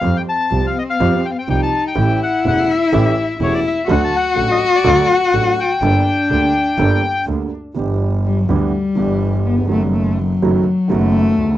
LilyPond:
<<
  \new Staff \with { instrumentName = "Bandoneon" } { \time 4/4 \key f \mixolydian \tempo 4 = 124 f''16 g''16 a''8. f''16 ees''16 f''8. g''32 f''32 g''16 g''16 a''8 g''16~ | g''8 fis''8 fis''8 e''4. cis''16 d''16 e''8 | fis''16 a''16 fis''8. ees''8 d''8. fis''4 g''8~ | g''2. r4 |
\key g \major r1 | r1 | }
  \new Staff \with { instrumentName = "Cello" } { \time 4/4 \key f \mixolydian c'2. ees'4 | e'2. e'4 | fis'1 | d'2.~ d'8 r8 |
\key g \major r4 g16 fis16 g2 b8 | a16 g16 a8 fis4. a4. | }
  \new Staff \with { instrumentName = "Grand piano" } { \clef bass \time 4/4 \key f \mixolydian << { <f, f g c' g'>8 r8 <c, c f g c' g'>8 r8 <f, f g c' g'>8 r8 <c, c f g c' g'>8 r8 | <a,, a, e a cis' g'>8 r8 <e,, e, e a cis' g'>8 r8 <a,, a, e a cis' g'>8 r8 <e,, e, e a cis' g'>8 r8 | <d, d fis a d' a'>8 r8 <a,, a, fis a d' a'>8 r8 <d, d fis a d' a'>8 r8 <a,, a, fis a d' a'>8 r8 | <g,, g, g bes d' a'>8 r8 <d, d g bes d' a'>8 r8 <g,, g, g bes d' a'>8 r8 <d, d g bes d' a'>8 r8 |
\key g \major <g,, g, e b d' g'>4. <d, d e b d' g'>8 r8 <g,, g, e b d' g'>4. | <fis, dis fis a b fis'>4. <fis, dis fis a b fis'>8 r8 <fis, dis fis a b fis'>4. | } \\ { r1 | r1 | r1 | r1 |
r2. r8 r32 ees,32 e,32 f,32 | r2. r8 r32 cis,32 d,32 r32 | } >> }
  \new Staff \with { instrumentName = "Double bass" } { \clef bass \time 4/4 \key f \mixolydian f,8 r8 c,8 r8 f,8 r8 c,8 r8 | a,,8 r8 e,,8 r8 a,,8 r8 e,,8 r8 | d,8 r8 a,,8 r8 d,8 r8 a,,8 r8 | g,,8 r8 d,8 r8 g,,8 r8 d,8 r8 |
\key g \major g,,4. d,8 r8 g,,4. | fis,,4. fis,,8 r8 fis,,4 d,8 | }
>>